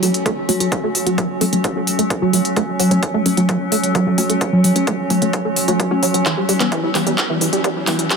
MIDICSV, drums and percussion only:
0, 0, Header, 1, 2, 480
1, 0, Start_track
1, 0, Tempo, 461538
1, 748, Time_signature, 4, 2, 24, 8
1, 8495, End_track
2, 0, Start_track
2, 0, Title_t, "Drums"
2, 28, Note_on_c, 9, 46, 107
2, 132, Note_off_c, 9, 46, 0
2, 149, Note_on_c, 9, 42, 68
2, 253, Note_off_c, 9, 42, 0
2, 268, Note_on_c, 9, 36, 114
2, 268, Note_on_c, 9, 42, 66
2, 372, Note_off_c, 9, 36, 0
2, 372, Note_off_c, 9, 42, 0
2, 508, Note_on_c, 9, 46, 103
2, 612, Note_off_c, 9, 46, 0
2, 628, Note_on_c, 9, 42, 70
2, 732, Note_off_c, 9, 42, 0
2, 747, Note_on_c, 9, 36, 120
2, 748, Note_on_c, 9, 42, 68
2, 851, Note_off_c, 9, 36, 0
2, 852, Note_off_c, 9, 42, 0
2, 987, Note_on_c, 9, 46, 106
2, 1091, Note_off_c, 9, 46, 0
2, 1108, Note_on_c, 9, 42, 69
2, 1212, Note_off_c, 9, 42, 0
2, 1227, Note_on_c, 9, 36, 116
2, 1228, Note_on_c, 9, 42, 67
2, 1331, Note_off_c, 9, 36, 0
2, 1332, Note_off_c, 9, 42, 0
2, 1468, Note_on_c, 9, 46, 106
2, 1572, Note_off_c, 9, 46, 0
2, 1589, Note_on_c, 9, 42, 66
2, 1693, Note_off_c, 9, 42, 0
2, 1707, Note_on_c, 9, 36, 120
2, 1707, Note_on_c, 9, 42, 66
2, 1811, Note_off_c, 9, 36, 0
2, 1811, Note_off_c, 9, 42, 0
2, 1947, Note_on_c, 9, 46, 108
2, 2051, Note_off_c, 9, 46, 0
2, 2068, Note_on_c, 9, 42, 68
2, 2172, Note_off_c, 9, 42, 0
2, 2188, Note_on_c, 9, 36, 126
2, 2188, Note_on_c, 9, 42, 70
2, 2292, Note_off_c, 9, 36, 0
2, 2292, Note_off_c, 9, 42, 0
2, 2427, Note_on_c, 9, 46, 106
2, 2531, Note_off_c, 9, 46, 0
2, 2548, Note_on_c, 9, 42, 65
2, 2652, Note_off_c, 9, 42, 0
2, 2667, Note_on_c, 9, 36, 126
2, 2667, Note_on_c, 9, 42, 65
2, 2771, Note_off_c, 9, 36, 0
2, 2771, Note_off_c, 9, 42, 0
2, 2908, Note_on_c, 9, 46, 110
2, 3012, Note_off_c, 9, 46, 0
2, 3028, Note_on_c, 9, 42, 68
2, 3132, Note_off_c, 9, 42, 0
2, 3147, Note_on_c, 9, 42, 68
2, 3148, Note_on_c, 9, 36, 119
2, 3251, Note_off_c, 9, 42, 0
2, 3252, Note_off_c, 9, 36, 0
2, 3388, Note_on_c, 9, 46, 106
2, 3492, Note_off_c, 9, 46, 0
2, 3509, Note_on_c, 9, 42, 64
2, 3613, Note_off_c, 9, 42, 0
2, 3628, Note_on_c, 9, 36, 125
2, 3628, Note_on_c, 9, 42, 67
2, 3732, Note_off_c, 9, 36, 0
2, 3732, Note_off_c, 9, 42, 0
2, 3868, Note_on_c, 9, 46, 113
2, 3972, Note_off_c, 9, 46, 0
2, 3989, Note_on_c, 9, 42, 64
2, 4093, Note_off_c, 9, 42, 0
2, 4107, Note_on_c, 9, 36, 118
2, 4107, Note_on_c, 9, 42, 68
2, 4211, Note_off_c, 9, 36, 0
2, 4211, Note_off_c, 9, 42, 0
2, 4347, Note_on_c, 9, 46, 106
2, 4451, Note_off_c, 9, 46, 0
2, 4468, Note_on_c, 9, 42, 64
2, 4572, Note_off_c, 9, 42, 0
2, 4587, Note_on_c, 9, 36, 124
2, 4587, Note_on_c, 9, 42, 63
2, 4691, Note_off_c, 9, 36, 0
2, 4691, Note_off_c, 9, 42, 0
2, 4827, Note_on_c, 9, 46, 105
2, 4931, Note_off_c, 9, 46, 0
2, 4948, Note_on_c, 9, 42, 66
2, 5052, Note_off_c, 9, 42, 0
2, 5067, Note_on_c, 9, 36, 117
2, 5067, Note_on_c, 9, 42, 65
2, 5171, Note_off_c, 9, 36, 0
2, 5171, Note_off_c, 9, 42, 0
2, 5307, Note_on_c, 9, 46, 104
2, 5411, Note_off_c, 9, 46, 0
2, 5428, Note_on_c, 9, 42, 64
2, 5532, Note_off_c, 9, 42, 0
2, 5547, Note_on_c, 9, 36, 121
2, 5547, Note_on_c, 9, 42, 63
2, 5651, Note_off_c, 9, 36, 0
2, 5651, Note_off_c, 9, 42, 0
2, 5787, Note_on_c, 9, 46, 110
2, 5891, Note_off_c, 9, 46, 0
2, 5908, Note_on_c, 9, 42, 64
2, 6012, Note_off_c, 9, 42, 0
2, 6028, Note_on_c, 9, 36, 122
2, 6028, Note_on_c, 9, 42, 66
2, 6132, Note_off_c, 9, 36, 0
2, 6132, Note_off_c, 9, 42, 0
2, 6268, Note_on_c, 9, 46, 111
2, 6372, Note_off_c, 9, 46, 0
2, 6388, Note_on_c, 9, 42, 61
2, 6492, Note_off_c, 9, 42, 0
2, 6508, Note_on_c, 9, 36, 123
2, 6508, Note_on_c, 9, 39, 51
2, 6508, Note_on_c, 9, 42, 64
2, 6612, Note_off_c, 9, 36, 0
2, 6612, Note_off_c, 9, 39, 0
2, 6612, Note_off_c, 9, 42, 0
2, 6748, Note_on_c, 9, 46, 102
2, 6852, Note_off_c, 9, 46, 0
2, 6868, Note_on_c, 9, 39, 44
2, 6868, Note_on_c, 9, 42, 65
2, 6972, Note_off_c, 9, 39, 0
2, 6972, Note_off_c, 9, 42, 0
2, 6988, Note_on_c, 9, 36, 121
2, 6988, Note_on_c, 9, 42, 63
2, 7092, Note_off_c, 9, 36, 0
2, 7092, Note_off_c, 9, 42, 0
2, 7228, Note_on_c, 9, 39, 53
2, 7228, Note_on_c, 9, 46, 105
2, 7332, Note_off_c, 9, 39, 0
2, 7332, Note_off_c, 9, 46, 0
2, 7349, Note_on_c, 9, 42, 59
2, 7453, Note_off_c, 9, 42, 0
2, 7468, Note_on_c, 9, 36, 118
2, 7468, Note_on_c, 9, 39, 52
2, 7468, Note_on_c, 9, 42, 63
2, 7572, Note_off_c, 9, 36, 0
2, 7572, Note_off_c, 9, 39, 0
2, 7572, Note_off_c, 9, 42, 0
2, 7708, Note_on_c, 9, 46, 109
2, 7812, Note_off_c, 9, 46, 0
2, 7829, Note_on_c, 9, 42, 63
2, 7933, Note_off_c, 9, 42, 0
2, 7948, Note_on_c, 9, 36, 118
2, 7949, Note_on_c, 9, 42, 63
2, 8052, Note_off_c, 9, 36, 0
2, 8053, Note_off_c, 9, 42, 0
2, 8188, Note_on_c, 9, 39, 55
2, 8188, Note_on_c, 9, 46, 102
2, 8292, Note_off_c, 9, 39, 0
2, 8292, Note_off_c, 9, 46, 0
2, 8309, Note_on_c, 9, 42, 64
2, 8413, Note_off_c, 9, 42, 0
2, 8428, Note_on_c, 9, 36, 120
2, 8429, Note_on_c, 9, 39, 60
2, 8429, Note_on_c, 9, 42, 63
2, 8495, Note_off_c, 9, 36, 0
2, 8495, Note_off_c, 9, 39, 0
2, 8495, Note_off_c, 9, 42, 0
2, 8495, End_track
0, 0, End_of_file